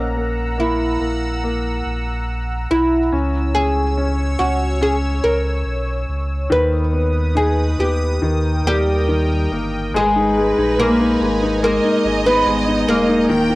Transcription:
Already playing: A#1 A#3 C#4 F#5 A#5 E6
0.16 A#3
0.58 A#3 E4
1.00 A#1 A#3
1.44 A#3
1.86 A#1
2.70 B1 E4
3.12 C#2 C#4 C#5 E6
3.55 C#4 G#4
3.98 C#4
4.39 C#2 C#4 F#4
4.81 C#4 G#4
5.24 C#2 A#4
5.65 B1
6.08 C#2
6.50 D#2 D#3 B4 D#6
6.93 B3
7.35 D#4 G#4
7.78 D#2 B3 G4
8.21 D#2 D#3 A#4 G5
8.64 D#2 G3 A#3 G4
9.08 D#3
9.51 G1 A#3
9.93 G#1 G#3 G#4 B4 G#5 A#5
10.16 D#4
10.37 G#3
10.58 A#1 D#4
10.79 G#3 A#3 A#4
11.00 D#4
11.20 G#1 G#3
11.43 D#4
11.62 G#3 A#3 A#4 D#5
11.84 D#4
12.04 G#1 G#3
12.26 B3 D#4 B4
12.46 G#1 G#3
12.68 D#4
12.87 E1 G#3 A#3 A#4
13.09 D#4
13.29 D#1 D#3 G5 D#6
13.50 D#3

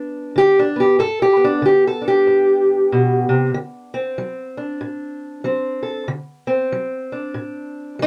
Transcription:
Already playing: G2 B3 D4
0.36 D3 G4
0.59 D4
0.76 B3
0.80 G4
0.99 G2 A4
1.22 G4
1.37 B3
1.44 D4
1.62 D3 G4
1.87 A4
2.02 D4
2.08 G4
2.27 G2
2.92 B2
3.29 C3
3.54 D3
3.94 C4
4.18 F#3
4.57 D4
4.81 A2
5.44 F#3 C4
5.83 A4
6.08 D3
6.47 C4
6.72 F#3
7.12 D4
7.34 A2
7.99 F#3 F4

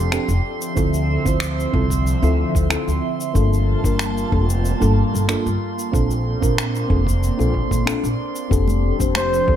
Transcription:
Already playing: F1 F3 D4 G4 A4 C6
0.12 C4 D4 G4 A4, finger snap, shaker
0.28 F1, shaker
0.43 D3 F3 C4 E5
0.61 shaker
0.75 D2 C4 E4 F4 A4, kick, shaker
0.94 shaker
1.25 D2 C4 E4 F4 C5, kick, shaker
1.40 finger snap, shaker
1.60 shaker
1.72 C2 C4 E4 F4 A4, kick
1.90 kick, shaker
2.07 shaker
2.22 D2 C4 E4 F4 A4, shaker
2.55 D2, kick, shaker
2.69 C4 E4 F4 A4, finger snap, shaker
2.88 D2, shaker
3.21 shaker
3.34 G1 G3 A#3 D4 F4 A4 A5, kick, shaker
3.53 shaker
3.84 G1 A#3 D4 F4 A#4, kick, shaker
3.99 finger snap, shaker
4.18 shaker
4.31 F1 A#3 D4 F4 A4, kick
4.50 shaker
4.65 shaker
4.80 G1 A#3 D4 F4 A4, shaker
5.14 G1, shaker
5.28 A#3 D4 F4 A4, finger snap, shaker
5.46 G1, shaker
5.79 shaker
5.92 A#1 A#3 C4 D4 F4 A4, kick, shaker
6.11 shaker
6.41 A#1 C4 D4 F4 A#4, kick, shaker
6.58 finger snap, shaker
6.75 shaker
6.88 F1 C4 D4 F4 A4, kick
7.07 kick, shaker
7.23 shaker
7.38 A#1 C4 D4 F4 A4, shaker
7.54 kick
7.71 A#1, kick, shaker
7.86 C4 D4 F4 A4, finger snap, shaker
8.03 A#1, shaker
8.35 shaker
8.50 F1 F3 C4 D4 G4 A4 C6, kick, shaker
8.68 high conga, shaker
8.99 F1 C4 D4 G4 C5, kick, shaker
9.15 C5, finger snap, muted conga, high conga, shaker
9.34 shaker
9.47 D2 C4 D4 G4 A4, kick

